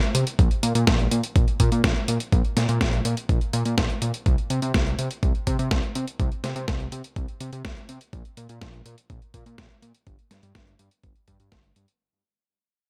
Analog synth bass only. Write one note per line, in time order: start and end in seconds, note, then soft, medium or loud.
0.15 0.25 C3 medium
0.39 0.49 A#1 loud
0.63 0.73 A#2 medium
0.75 0.85 A#2 loud
0.87 1.08 A#1 loud
1.11 1.22 A#2 medium
1.36 1.46 A#1 medium
1.60 1.70 A#2 medium
1.72 1.82 A#2 medium
1.84 1.94 A#1 medium
2.08 2.18 A#2 medium
2.32 2.43 A#1 medium
2.57 2.67 A#2 medium
2.69 2.79 A#2 loud
2.81 3.01 A#1 loud
3.05 3.15 A#2 medium
3.29 3.39 A#1 medium
3.53 3.64 A#2 medium
3.66 3.76 A#2 medium
3.78 3.88 A#1 medium
4.02 4.12 A#2 medium
4.26 4.36 C2 loud
4.50 4.60 C3 medium
4.62 4.72 C3 medium
4.74 4.95 C2 loud
4.99 5.09 C3 medium
5.23 5.33 C2 medium
5.47 5.57 C3 medium
5.59 5.69 C3 medium
5.71 5.81 C2 medium
5.95 6.06 C3 medium
6.20 6.30 C2 loud
6.44 6.54 C3 medium
6.56 6.66 C3 loud
6.68 6.88 C2 loud
6.92 7.02 C3 medium
7.16 7.26 C2 medium
7.41 7.51 C3 medium
7.53 7.63 C3 medium
7.65 7.75 C2 medium
7.89 7.99 C3 medium
8.13 8.23 A#1 loud
8.37 8.47 A#2 medium
8.49 8.59 A#2 medium
8.61 8.82 A#1 loud
8.86 8.96 A#2 medium
9.10 9.20 A#1 medium
9.34 9.44 A#2 medium
9.46 9.56 A#2 medium
9.58 9.68 A#1 medium
9.82 9.93 A#2 medium
10.07 10.17 G1 medium
10.31 10.41 G2 medium
10.43 10.53 G2 loud
10.55 10.75 G1 medium
10.79 10.89 G2 medium
11.04 11.14 G1 medium
11.28 11.38 G2 medium
11.40 11.50 G2 medium
11.52 11.72 G1 medium
11.76 11.86 G2 medium